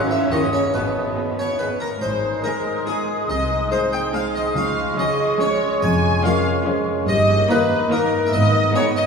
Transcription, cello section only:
0, 0, Header, 1, 2, 480
1, 0, Start_track
1, 0, Key_signature, -4, "major"
1, 0, Tempo, 425532
1, 836, Time_signature, 3, 2, 24, 8
1, 3715, Tempo, 420168
1, 10307, End_track
2, 0, Start_track
2, 0, Title_t, "Cello section"
2, 0, Program_c, 0, 48
2, 0, Note_on_c, 0, 61, 77
2, 836, Note_off_c, 0, 61, 0
2, 841, Note_on_c, 0, 59, 53
2, 2021, Note_off_c, 0, 59, 0
2, 2282, Note_on_c, 0, 44, 68
2, 2660, Note_off_c, 0, 44, 0
2, 3715, Note_on_c, 0, 48, 67
2, 4096, Note_off_c, 0, 48, 0
2, 5166, Note_on_c, 0, 49, 73
2, 5543, Note_off_c, 0, 49, 0
2, 6608, Note_on_c, 0, 41, 84
2, 6985, Note_off_c, 0, 41, 0
2, 8044, Note_on_c, 0, 43, 85
2, 8423, Note_off_c, 0, 43, 0
2, 9479, Note_on_c, 0, 44, 94
2, 9858, Note_off_c, 0, 44, 0
2, 10307, End_track
0, 0, End_of_file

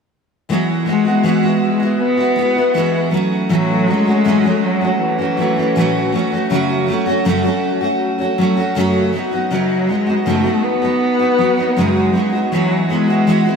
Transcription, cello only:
0, 0, Header, 1, 2, 480
1, 0, Start_track
1, 0, Key_signature, 4, "major"
1, 0, Tempo, 751880
1, 319, Time_signature, 4, 2, 24, 8
1, 8657, End_track
2, 0, Start_track
2, 0, Title_t, "Cello"
2, 0, Program_c, 0, 42
2, 324, Note_on_c, 0, 54, 59
2, 430, Note_off_c, 0, 54, 0
2, 562, Note_on_c, 0, 56, 86
2, 1015, Note_off_c, 0, 56, 0
2, 1045, Note_on_c, 0, 56, 77
2, 1265, Note_off_c, 0, 56, 0
2, 1288, Note_on_c, 0, 59, 82
2, 1978, Note_off_c, 0, 59, 0
2, 2242, Note_on_c, 0, 54, 80
2, 2484, Note_on_c, 0, 56, 93
2, 2493, Note_off_c, 0, 54, 0
2, 2958, Note_on_c, 0, 54, 81
2, 2968, Note_off_c, 0, 56, 0
2, 3194, Note_off_c, 0, 54, 0
2, 3198, Note_on_c, 0, 52, 75
2, 3892, Note_off_c, 0, 52, 0
2, 6079, Note_on_c, 0, 54, 67
2, 6317, Note_on_c, 0, 56, 77
2, 6326, Note_off_c, 0, 54, 0
2, 6553, Note_off_c, 0, 56, 0
2, 6557, Note_on_c, 0, 57, 72
2, 6795, Note_on_c, 0, 59, 87
2, 6804, Note_off_c, 0, 57, 0
2, 7511, Note_off_c, 0, 59, 0
2, 7515, Note_on_c, 0, 56, 71
2, 7969, Note_off_c, 0, 56, 0
2, 7993, Note_on_c, 0, 54, 79
2, 8216, Note_off_c, 0, 54, 0
2, 8231, Note_on_c, 0, 56, 91
2, 8657, Note_off_c, 0, 56, 0
2, 8657, End_track
0, 0, End_of_file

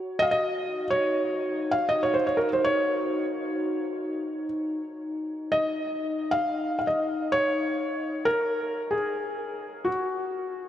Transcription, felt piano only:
0, 0, Header, 1, 2, 480
1, 0, Start_track
1, 0, Key_signature, -6, "major"
1, 0, Tempo, 500000
1, 10258, End_track
2, 0, Start_track
2, 0, Title_t, "Felt piano"
2, 0, Program_c, 0, 0
2, 0, Note_on_c, 0, 73, 73
2, 184, Note_on_c, 0, 75, 100
2, 212, Note_off_c, 0, 73, 0
2, 214, Note_on_c, 0, 77, 72
2, 230, Note_off_c, 0, 75, 0
2, 282, Note_off_c, 0, 77, 0
2, 301, Note_on_c, 0, 75, 83
2, 802, Note_off_c, 0, 75, 0
2, 868, Note_on_c, 0, 73, 85
2, 1645, Note_on_c, 0, 77, 81
2, 1674, Note_off_c, 0, 73, 0
2, 1799, Note_off_c, 0, 77, 0
2, 1810, Note_on_c, 0, 75, 79
2, 1925, Note_off_c, 0, 75, 0
2, 1945, Note_on_c, 0, 73, 74
2, 2050, Note_on_c, 0, 72, 66
2, 2054, Note_off_c, 0, 73, 0
2, 2155, Note_off_c, 0, 72, 0
2, 2174, Note_on_c, 0, 73, 69
2, 2270, Note_off_c, 0, 73, 0
2, 2273, Note_on_c, 0, 70, 63
2, 2383, Note_off_c, 0, 70, 0
2, 2428, Note_on_c, 0, 72, 64
2, 2537, Note_off_c, 0, 72, 0
2, 2538, Note_on_c, 0, 73, 85
2, 4268, Note_off_c, 0, 73, 0
2, 5297, Note_on_c, 0, 75, 86
2, 6062, Note_on_c, 0, 77, 86
2, 6076, Note_off_c, 0, 75, 0
2, 6500, Note_off_c, 0, 77, 0
2, 6515, Note_on_c, 0, 77, 57
2, 6579, Note_off_c, 0, 77, 0
2, 6598, Note_on_c, 0, 75, 67
2, 7029, Note_on_c, 0, 73, 93
2, 7039, Note_off_c, 0, 75, 0
2, 7925, Note_on_c, 0, 70, 88
2, 7938, Note_off_c, 0, 73, 0
2, 8552, Note_on_c, 0, 68, 72
2, 8575, Note_off_c, 0, 70, 0
2, 9450, Note_on_c, 0, 66, 62
2, 9480, Note_off_c, 0, 68, 0
2, 10258, Note_off_c, 0, 66, 0
2, 10258, End_track
0, 0, End_of_file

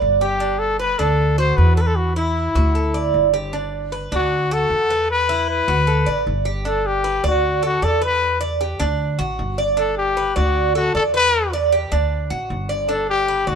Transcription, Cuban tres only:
0, 0, Header, 1, 2, 480
1, 0, Start_track
1, 0, Key_signature, 1, "major"
1, 0, Tempo, 390117
1, 506, Time_signature, 4, 2, 24, 8
1, 16673, End_track
2, 0, Start_track
2, 0, Title_t, "Cuban tres"
2, 0, Program_c, 0, 25
2, 0, Note_on_c, 0, 74, 78
2, 248, Note_off_c, 0, 74, 0
2, 261, Note_on_c, 0, 67, 73
2, 495, Note_on_c, 0, 62, 74
2, 496, Note_off_c, 0, 67, 0
2, 966, Note_off_c, 0, 62, 0
2, 977, Note_on_c, 0, 71, 69
2, 1214, Note_off_c, 0, 71, 0
2, 1218, Note_on_c, 0, 62, 87
2, 1687, Note_off_c, 0, 62, 0
2, 1700, Note_on_c, 0, 66, 81
2, 2168, Note_off_c, 0, 66, 0
2, 2181, Note_on_c, 0, 71, 74
2, 2649, Note_off_c, 0, 71, 0
2, 2661, Note_on_c, 0, 64, 85
2, 3130, Note_off_c, 0, 64, 0
2, 3144, Note_on_c, 0, 66, 74
2, 3378, Note_off_c, 0, 66, 0
2, 3384, Note_on_c, 0, 69, 61
2, 3618, Note_off_c, 0, 69, 0
2, 3621, Note_on_c, 0, 74, 81
2, 4090, Note_off_c, 0, 74, 0
2, 4105, Note_on_c, 0, 67, 83
2, 4339, Note_off_c, 0, 67, 0
2, 4344, Note_on_c, 0, 62, 74
2, 4812, Note_off_c, 0, 62, 0
2, 4826, Note_on_c, 0, 71, 75
2, 5060, Note_off_c, 0, 71, 0
2, 5070, Note_on_c, 0, 62, 88
2, 5535, Note_off_c, 0, 62, 0
2, 5553, Note_on_c, 0, 66, 82
2, 6017, Note_off_c, 0, 66, 0
2, 6034, Note_on_c, 0, 71, 74
2, 6498, Note_off_c, 0, 71, 0
2, 6510, Note_on_c, 0, 64, 90
2, 6976, Note_off_c, 0, 64, 0
2, 6988, Note_on_c, 0, 66, 72
2, 7219, Note_off_c, 0, 66, 0
2, 7224, Note_on_c, 0, 69, 68
2, 7460, Note_off_c, 0, 69, 0
2, 7460, Note_on_c, 0, 74, 78
2, 7931, Note_off_c, 0, 74, 0
2, 7940, Note_on_c, 0, 67, 77
2, 8178, Note_off_c, 0, 67, 0
2, 8184, Note_on_c, 0, 62, 73
2, 8653, Note_off_c, 0, 62, 0
2, 8663, Note_on_c, 0, 71, 77
2, 8900, Note_off_c, 0, 71, 0
2, 8906, Note_on_c, 0, 74, 85
2, 9374, Note_off_c, 0, 74, 0
2, 9384, Note_on_c, 0, 69, 82
2, 9620, Note_off_c, 0, 69, 0
2, 9626, Note_on_c, 0, 74, 71
2, 9857, Note_off_c, 0, 74, 0
2, 9862, Note_on_c, 0, 71, 73
2, 10332, Note_off_c, 0, 71, 0
2, 10343, Note_on_c, 0, 74, 87
2, 10580, Note_off_c, 0, 74, 0
2, 10589, Note_on_c, 0, 67, 76
2, 10822, Note_on_c, 0, 62, 94
2, 10823, Note_off_c, 0, 67, 0
2, 11292, Note_off_c, 0, 62, 0
2, 11303, Note_on_c, 0, 66, 87
2, 11772, Note_off_c, 0, 66, 0
2, 11788, Note_on_c, 0, 74, 80
2, 12021, Note_on_c, 0, 62, 81
2, 12022, Note_off_c, 0, 74, 0
2, 12491, Note_off_c, 0, 62, 0
2, 12511, Note_on_c, 0, 71, 77
2, 12741, Note_off_c, 0, 71, 0
2, 12746, Note_on_c, 0, 74, 83
2, 13213, Note_off_c, 0, 74, 0
2, 13230, Note_on_c, 0, 69, 84
2, 13463, Note_off_c, 0, 69, 0
2, 13470, Note_on_c, 0, 74, 67
2, 13701, Note_off_c, 0, 74, 0
2, 13706, Note_on_c, 0, 71, 74
2, 14173, Note_off_c, 0, 71, 0
2, 14191, Note_on_c, 0, 74, 86
2, 14423, Note_off_c, 0, 74, 0
2, 14426, Note_on_c, 0, 67, 80
2, 14660, Note_off_c, 0, 67, 0
2, 14662, Note_on_c, 0, 62, 89
2, 15131, Note_off_c, 0, 62, 0
2, 15139, Note_on_c, 0, 66, 81
2, 15609, Note_off_c, 0, 66, 0
2, 15617, Note_on_c, 0, 74, 82
2, 15855, Note_off_c, 0, 74, 0
2, 15856, Note_on_c, 0, 62, 77
2, 16327, Note_off_c, 0, 62, 0
2, 16344, Note_on_c, 0, 71, 77
2, 16568, Note_off_c, 0, 71, 0
2, 16573, Note_on_c, 0, 74, 76
2, 16673, Note_off_c, 0, 74, 0
2, 16673, End_track
0, 0, End_of_file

